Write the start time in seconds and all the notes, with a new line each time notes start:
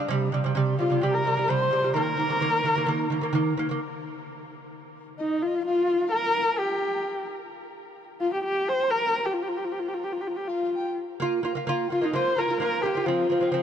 0.08 C3 G3
0.32 C3 G3
0.44 C3 G3
0.55 C3 G3
0.77 C3 G3 F4 F5
0.90 C3 G3
1.00 C3 G3 G4 G5
1.11 A#4 A#5
1.25 C3 G3
1.37 C3 G3
1.47 C3 G3 C5 C6
1.71 C3 G3
1.82 C3 G3
1.93 D#3 A#3 A#4 A#5
2.00 G5
2.08 A#5
2.17 D#3 A#3
2.29 D#3 A#3
2.40 D#3 A#3
2.63 D#3 A#3
2.75 D#3 A#3
2.86 D#3 A#3
3.10 D#3 A#3
3.21 D#3 A#3
3.33 D#3 A#3
3.57 D#3 A#3
3.69 D#3 A#3
5.18 D#4 D#5
5.42 F4 F5
5.47 D#5
5.55 F5
5.65 F4 F5
6.12 A#4 A#5
6.58 G4 G5
8.20 F4 F5
8.32 G4 G5
8.44 G4 G5
8.68 C5
8.84 C6
8.89 A#4 A#5
9.25 G4 G5
9.33 F4
9.42 G4
9.48 F4
9.57 G4
9.64 F4
9.72 G4
9.79 F4
9.88 G4
9.94 F4
10.04 G4
10.12 F4
10.21 G4
10.27 F4
10.36 G4
10.47 F4 F5
10.74 G5
11.20 A#3 F4
11.43 A#3 F4
11.55 A#3 F4
11.67 A#3 F4
11.88 A#3 F5 G5
11.92 F4
12.01 A#3 D#4 F4 D#5
12.13 A#3 F4 C5 C6
12.36 A#3 F4 A#4 A#5
12.48 A#3 F4
12.59 A#3 F4 A#4 A#5
12.75 A#5
12.81 A#3 G4 G5
12.85 F4
12.95 A#3 F4
13.05 F3 C4 F4 F5
13.30 F3 C4
13.41 F3 C4
13.46 G5
13.52 F3 C4 F5